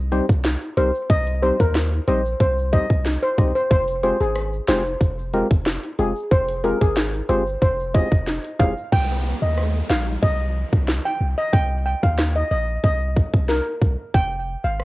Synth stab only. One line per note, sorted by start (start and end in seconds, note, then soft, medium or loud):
0.12 0.26 G3 medium
0.12 0.26 C4 medium
0.12 0.26 D#4 medium
0.12 0.26 G4 medium
0.12 0.26 C5 loud
0.77 0.91 G3 medium
0.77 0.91 C4 medium
0.77 0.91 D#4 medium
0.77 0.91 G4 medium
0.77 0.91 A#4 medium
1.42 1.56 G3 medium
1.42 1.56 C4 medium
1.42 1.56 D#4 medium
1.42 1.56 G4 medium
1.42 1.56 C5 medium
2.08 2.21 G3 medium
2.08 2.21 C4 medium
2.08 2.22 D#4 medium
2.08 2.22 G4 medium
2.08 2.21 D#5 medium
2.73 2.87 G3 medium
2.73 2.87 C4 medium
2.73 2.87 D#4 medium
2.73 2.87 G4 medium
2.73 2.87 C5 medium
3.38 3.52 G3 medium
3.38 3.52 C4 medium
3.38 3.52 D#4 medium
3.38 3.52 G4 medium
3.38 3.52 D#5 medium
4.03 4.17 G#3 medium
4.03 4.17 C4 medium
4.03 4.17 F4 medium
4.03 4.17 G4 medium
4.03 4.17 G#4 medium
4.68 4.82 G#3 medium
4.68 4.82 C4 medium
4.68 4.82 F4 medium
4.68 4.82 G4 medium
4.68 4.82 G#4 medium
5.34 5.47 G#3 medium
5.34 5.47 C4 medium
5.34 5.47 F4 medium
5.34 5.48 G4 medium
5.34 5.48 A#4 loud
5.99 6.13 G#3 medium
5.99 6.13 C4 medium
5.99 6.13 F4 medium
5.99 6.13 G4 medium
5.99 6.13 G#4 medium
6.64 6.78 G#3 medium
6.64 6.78 C4 medium
6.64 6.78 F4 medium
6.64 6.78 G4 medium
6.64 6.78 G#4 medium
7.29 7.43 G#3 medium
7.29 7.43 C4 medium
7.29 7.43 F4 medium
7.29 7.43 G4 medium
7.29 7.43 G#4 medium
7.95 8.08 G#3 medium
7.95 8.08 C4 medium
7.95 8.08 F4 medium
7.95 8.08 G4 medium
7.95 8.08 G#4 medium
8.60 8.74 G#3 medium
8.60 8.74 C4 medium
8.60 8.74 F4 medium
8.60 8.74 G4 medium
8.60 8.74 G#4 medium